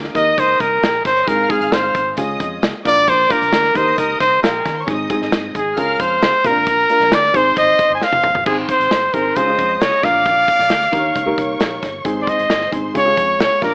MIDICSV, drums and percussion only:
0, 0, Header, 1, 2, 480
1, 0, Start_track
1, 0, Key_signature, -4, "major"
1, 0, Tempo, 448766
1, 1370, Time_signature, 4, 2, 24, 8
1, 14698, End_track
2, 0, Start_track
2, 0, Title_t, "Drums"
2, 44, Note_on_c, 9, 38, 34
2, 151, Note_off_c, 9, 38, 0
2, 161, Note_on_c, 9, 36, 81
2, 170, Note_on_c, 9, 42, 77
2, 268, Note_off_c, 9, 36, 0
2, 277, Note_off_c, 9, 42, 0
2, 403, Note_on_c, 9, 42, 91
2, 405, Note_on_c, 9, 36, 93
2, 510, Note_off_c, 9, 42, 0
2, 512, Note_off_c, 9, 36, 0
2, 644, Note_on_c, 9, 36, 88
2, 650, Note_on_c, 9, 42, 73
2, 751, Note_off_c, 9, 36, 0
2, 757, Note_off_c, 9, 42, 0
2, 887, Note_on_c, 9, 42, 69
2, 894, Note_on_c, 9, 38, 110
2, 994, Note_off_c, 9, 42, 0
2, 1001, Note_off_c, 9, 38, 0
2, 1124, Note_on_c, 9, 36, 95
2, 1130, Note_on_c, 9, 42, 79
2, 1137, Note_on_c, 9, 38, 33
2, 1231, Note_off_c, 9, 36, 0
2, 1237, Note_off_c, 9, 42, 0
2, 1244, Note_off_c, 9, 38, 0
2, 1246, Note_on_c, 9, 42, 50
2, 1353, Note_off_c, 9, 42, 0
2, 1364, Note_on_c, 9, 36, 115
2, 1367, Note_on_c, 9, 42, 85
2, 1471, Note_off_c, 9, 36, 0
2, 1474, Note_off_c, 9, 42, 0
2, 1603, Note_on_c, 9, 36, 104
2, 1613, Note_on_c, 9, 42, 73
2, 1710, Note_off_c, 9, 36, 0
2, 1720, Note_off_c, 9, 42, 0
2, 1726, Note_on_c, 9, 42, 54
2, 1833, Note_off_c, 9, 42, 0
2, 1841, Note_on_c, 9, 42, 86
2, 1842, Note_on_c, 9, 38, 98
2, 1948, Note_off_c, 9, 42, 0
2, 1949, Note_off_c, 9, 38, 0
2, 2082, Note_on_c, 9, 42, 76
2, 2084, Note_on_c, 9, 36, 88
2, 2189, Note_off_c, 9, 42, 0
2, 2191, Note_off_c, 9, 36, 0
2, 2320, Note_on_c, 9, 42, 95
2, 2328, Note_on_c, 9, 36, 86
2, 2427, Note_off_c, 9, 42, 0
2, 2435, Note_off_c, 9, 36, 0
2, 2568, Note_on_c, 9, 36, 90
2, 2568, Note_on_c, 9, 42, 73
2, 2675, Note_off_c, 9, 36, 0
2, 2675, Note_off_c, 9, 42, 0
2, 2807, Note_on_c, 9, 42, 67
2, 2814, Note_on_c, 9, 38, 113
2, 2914, Note_off_c, 9, 42, 0
2, 2921, Note_off_c, 9, 38, 0
2, 3053, Note_on_c, 9, 36, 86
2, 3055, Note_on_c, 9, 42, 84
2, 3061, Note_on_c, 9, 38, 33
2, 3159, Note_off_c, 9, 36, 0
2, 3162, Note_off_c, 9, 42, 0
2, 3168, Note_off_c, 9, 38, 0
2, 3171, Note_on_c, 9, 42, 49
2, 3278, Note_off_c, 9, 42, 0
2, 3293, Note_on_c, 9, 36, 108
2, 3294, Note_on_c, 9, 42, 87
2, 3400, Note_off_c, 9, 36, 0
2, 3401, Note_off_c, 9, 42, 0
2, 3534, Note_on_c, 9, 36, 101
2, 3543, Note_on_c, 9, 42, 67
2, 3641, Note_off_c, 9, 36, 0
2, 3650, Note_off_c, 9, 42, 0
2, 3660, Note_on_c, 9, 42, 57
2, 3767, Note_off_c, 9, 42, 0
2, 3771, Note_on_c, 9, 38, 98
2, 3771, Note_on_c, 9, 42, 84
2, 3878, Note_off_c, 9, 38, 0
2, 3878, Note_off_c, 9, 42, 0
2, 3895, Note_on_c, 9, 38, 33
2, 4002, Note_off_c, 9, 38, 0
2, 4015, Note_on_c, 9, 36, 82
2, 4021, Note_on_c, 9, 42, 72
2, 4122, Note_off_c, 9, 36, 0
2, 4128, Note_off_c, 9, 42, 0
2, 4256, Note_on_c, 9, 42, 100
2, 4258, Note_on_c, 9, 36, 86
2, 4363, Note_off_c, 9, 42, 0
2, 4365, Note_off_c, 9, 36, 0
2, 4497, Note_on_c, 9, 36, 85
2, 4497, Note_on_c, 9, 42, 81
2, 4604, Note_off_c, 9, 36, 0
2, 4604, Note_off_c, 9, 42, 0
2, 4740, Note_on_c, 9, 42, 69
2, 4748, Note_on_c, 9, 38, 119
2, 4847, Note_off_c, 9, 42, 0
2, 4855, Note_off_c, 9, 38, 0
2, 4980, Note_on_c, 9, 36, 89
2, 4987, Note_on_c, 9, 42, 77
2, 4993, Note_on_c, 9, 38, 32
2, 5086, Note_off_c, 9, 36, 0
2, 5094, Note_off_c, 9, 42, 0
2, 5100, Note_off_c, 9, 38, 0
2, 5217, Note_on_c, 9, 36, 115
2, 5219, Note_on_c, 9, 42, 86
2, 5324, Note_off_c, 9, 36, 0
2, 5326, Note_off_c, 9, 42, 0
2, 5454, Note_on_c, 9, 36, 106
2, 5459, Note_on_c, 9, 42, 68
2, 5561, Note_off_c, 9, 36, 0
2, 5566, Note_off_c, 9, 42, 0
2, 5582, Note_on_c, 9, 38, 33
2, 5689, Note_off_c, 9, 38, 0
2, 5694, Note_on_c, 9, 38, 105
2, 5694, Note_on_c, 9, 42, 85
2, 5801, Note_off_c, 9, 38, 0
2, 5801, Note_off_c, 9, 42, 0
2, 5936, Note_on_c, 9, 36, 85
2, 5941, Note_on_c, 9, 42, 75
2, 6043, Note_off_c, 9, 36, 0
2, 6048, Note_off_c, 9, 42, 0
2, 6172, Note_on_c, 9, 42, 92
2, 6177, Note_on_c, 9, 36, 85
2, 6279, Note_off_c, 9, 42, 0
2, 6284, Note_off_c, 9, 36, 0
2, 6414, Note_on_c, 9, 42, 81
2, 6415, Note_on_c, 9, 36, 90
2, 6521, Note_off_c, 9, 42, 0
2, 6522, Note_off_c, 9, 36, 0
2, 6652, Note_on_c, 9, 42, 65
2, 6659, Note_on_c, 9, 38, 117
2, 6759, Note_off_c, 9, 42, 0
2, 6766, Note_off_c, 9, 38, 0
2, 6893, Note_on_c, 9, 36, 88
2, 6893, Note_on_c, 9, 42, 80
2, 7000, Note_off_c, 9, 36, 0
2, 7000, Note_off_c, 9, 42, 0
2, 7130, Note_on_c, 9, 42, 87
2, 7132, Note_on_c, 9, 36, 109
2, 7237, Note_off_c, 9, 42, 0
2, 7239, Note_off_c, 9, 36, 0
2, 7375, Note_on_c, 9, 42, 68
2, 7482, Note_off_c, 9, 42, 0
2, 7496, Note_on_c, 9, 38, 32
2, 7603, Note_off_c, 9, 38, 0
2, 7613, Note_on_c, 9, 38, 103
2, 7613, Note_on_c, 9, 42, 84
2, 7720, Note_off_c, 9, 38, 0
2, 7720, Note_off_c, 9, 42, 0
2, 7739, Note_on_c, 9, 38, 37
2, 7846, Note_off_c, 9, 38, 0
2, 7854, Note_on_c, 9, 36, 92
2, 7861, Note_on_c, 9, 42, 75
2, 7961, Note_off_c, 9, 36, 0
2, 7968, Note_off_c, 9, 42, 0
2, 8088, Note_on_c, 9, 42, 91
2, 8095, Note_on_c, 9, 36, 90
2, 8195, Note_off_c, 9, 42, 0
2, 8202, Note_off_c, 9, 36, 0
2, 8329, Note_on_c, 9, 42, 78
2, 8332, Note_on_c, 9, 36, 88
2, 8436, Note_off_c, 9, 42, 0
2, 8439, Note_off_c, 9, 36, 0
2, 8573, Note_on_c, 9, 38, 60
2, 8680, Note_off_c, 9, 38, 0
2, 8691, Note_on_c, 9, 48, 67
2, 8798, Note_off_c, 9, 48, 0
2, 8809, Note_on_c, 9, 45, 81
2, 8916, Note_off_c, 9, 45, 0
2, 8930, Note_on_c, 9, 43, 93
2, 9037, Note_off_c, 9, 43, 0
2, 9048, Note_on_c, 9, 49, 89
2, 9052, Note_on_c, 9, 36, 111
2, 9154, Note_off_c, 9, 49, 0
2, 9159, Note_off_c, 9, 36, 0
2, 9291, Note_on_c, 9, 36, 94
2, 9295, Note_on_c, 9, 42, 64
2, 9398, Note_off_c, 9, 36, 0
2, 9402, Note_off_c, 9, 42, 0
2, 9420, Note_on_c, 9, 42, 51
2, 9527, Note_off_c, 9, 42, 0
2, 9531, Note_on_c, 9, 38, 101
2, 9531, Note_on_c, 9, 42, 81
2, 9638, Note_off_c, 9, 38, 0
2, 9638, Note_off_c, 9, 42, 0
2, 9774, Note_on_c, 9, 36, 79
2, 9777, Note_on_c, 9, 42, 72
2, 9881, Note_off_c, 9, 36, 0
2, 9884, Note_off_c, 9, 42, 0
2, 10010, Note_on_c, 9, 42, 88
2, 10017, Note_on_c, 9, 36, 89
2, 10117, Note_off_c, 9, 42, 0
2, 10124, Note_off_c, 9, 36, 0
2, 10253, Note_on_c, 9, 42, 73
2, 10255, Note_on_c, 9, 36, 90
2, 10360, Note_off_c, 9, 42, 0
2, 10362, Note_off_c, 9, 36, 0
2, 10492, Note_on_c, 9, 42, 66
2, 10499, Note_on_c, 9, 38, 113
2, 10599, Note_off_c, 9, 42, 0
2, 10606, Note_off_c, 9, 38, 0
2, 10732, Note_on_c, 9, 42, 73
2, 10733, Note_on_c, 9, 36, 90
2, 10738, Note_on_c, 9, 38, 30
2, 10839, Note_off_c, 9, 42, 0
2, 10840, Note_off_c, 9, 36, 0
2, 10845, Note_off_c, 9, 38, 0
2, 10969, Note_on_c, 9, 42, 85
2, 10972, Note_on_c, 9, 36, 112
2, 11075, Note_off_c, 9, 42, 0
2, 11078, Note_off_c, 9, 36, 0
2, 11210, Note_on_c, 9, 36, 101
2, 11215, Note_on_c, 9, 42, 68
2, 11317, Note_off_c, 9, 36, 0
2, 11322, Note_off_c, 9, 42, 0
2, 11332, Note_on_c, 9, 38, 31
2, 11333, Note_on_c, 9, 42, 51
2, 11439, Note_off_c, 9, 38, 0
2, 11440, Note_off_c, 9, 42, 0
2, 11446, Note_on_c, 9, 38, 92
2, 11446, Note_on_c, 9, 42, 81
2, 11553, Note_off_c, 9, 38, 0
2, 11553, Note_off_c, 9, 42, 0
2, 11570, Note_on_c, 9, 38, 35
2, 11677, Note_off_c, 9, 38, 0
2, 11690, Note_on_c, 9, 36, 87
2, 11695, Note_on_c, 9, 42, 71
2, 11797, Note_off_c, 9, 36, 0
2, 11802, Note_off_c, 9, 42, 0
2, 11930, Note_on_c, 9, 42, 89
2, 11933, Note_on_c, 9, 36, 87
2, 12037, Note_off_c, 9, 42, 0
2, 12040, Note_off_c, 9, 36, 0
2, 12170, Note_on_c, 9, 42, 72
2, 12171, Note_on_c, 9, 36, 85
2, 12277, Note_off_c, 9, 42, 0
2, 12278, Note_off_c, 9, 36, 0
2, 12407, Note_on_c, 9, 42, 66
2, 12414, Note_on_c, 9, 38, 110
2, 12514, Note_off_c, 9, 42, 0
2, 12521, Note_off_c, 9, 38, 0
2, 12649, Note_on_c, 9, 42, 78
2, 12650, Note_on_c, 9, 36, 80
2, 12656, Note_on_c, 9, 38, 33
2, 12756, Note_off_c, 9, 42, 0
2, 12757, Note_off_c, 9, 36, 0
2, 12763, Note_off_c, 9, 38, 0
2, 12888, Note_on_c, 9, 42, 89
2, 12889, Note_on_c, 9, 36, 102
2, 12995, Note_off_c, 9, 42, 0
2, 12996, Note_off_c, 9, 36, 0
2, 13127, Note_on_c, 9, 36, 101
2, 13136, Note_on_c, 9, 42, 72
2, 13234, Note_off_c, 9, 36, 0
2, 13243, Note_off_c, 9, 42, 0
2, 13253, Note_on_c, 9, 42, 54
2, 13360, Note_off_c, 9, 42, 0
2, 13368, Note_on_c, 9, 38, 101
2, 13368, Note_on_c, 9, 42, 80
2, 13475, Note_off_c, 9, 38, 0
2, 13475, Note_off_c, 9, 42, 0
2, 13487, Note_on_c, 9, 38, 36
2, 13594, Note_off_c, 9, 38, 0
2, 13610, Note_on_c, 9, 36, 86
2, 13617, Note_on_c, 9, 42, 76
2, 13717, Note_off_c, 9, 36, 0
2, 13723, Note_off_c, 9, 42, 0
2, 13852, Note_on_c, 9, 42, 86
2, 13853, Note_on_c, 9, 36, 86
2, 13959, Note_off_c, 9, 42, 0
2, 13960, Note_off_c, 9, 36, 0
2, 14090, Note_on_c, 9, 36, 87
2, 14092, Note_on_c, 9, 42, 68
2, 14197, Note_off_c, 9, 36, 0
2, 14199, Note_off_c, 9, 42, 0
2, 14330, Note_on_c, 9, 42, 65
2, 14337, Note_on_c, 9, 38, 112
2, 14437, Note_off_c, 9, 42, 0
2, 14444, Note_off_c, 9, 38, 0
2, 14569, Note_on_c, 9, 36, 83
2, 14572, Note_on_c, 9, 46, 54
2, 14578, Note_on_c, 9, 38, 31
2, 14676, Note_off_c, 9, 36, 0
2, 14679, Note_off_c, 9, 46, 0
2, 14685, Note_off_c, 9, 38, 0
2, 14698, End_track
0, 0, End_of_file